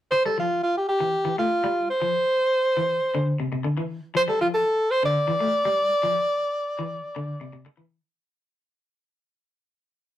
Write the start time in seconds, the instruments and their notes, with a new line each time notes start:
0.11 alto saxophone C5, muted clean electric guitar stroke
0.25 clean electric guitar G3, alto saxophone A4
0.38 clean electric guitar F3, alto saxophone F4
0.63 alto saxophone F4
0.77 alto saxophone G4
0.89 alto saxophone G4
1.00 clean electric guitar E3
1.25 clean electric guitar E3
1.38 clean electric guitar A3, alto saxophone F4
1.64 clean electric guitar G3
1.90 alto saxophone C5
2.02 clean electric guitar F3
2.77 clean electric guitar E3
3.15 clean electric guitar D3
3.40 clean electric guitar C3
3.52 clean electric guitar C3
3.64 clean electric guitar D3
3.77 clean electric guitar E3
4.15 clean electric guitar F3, alto saxophone C5
4.28 clean electric guitar G3, alto saxophone A4
4.41 clean electric guitar F3, alto saxophone F4
4.54 alto saxophone A4
4.91 alto saxophone C5
5.03 clean electric guitar D3, alto saxophone D5
5.28 clean electric guitar E3
5.40 clean electric guitar A3
5.65 clean electric guitar G3
6.03 clean electric guitar F3
6.79 clean electric guitar E3
7.16 clean electric guitar D3
7.41 clean electric guitar C3
7.53 clean electric guitar C3
7.66 muted clean electric guitar stroke
7.77 clean electric guitar E3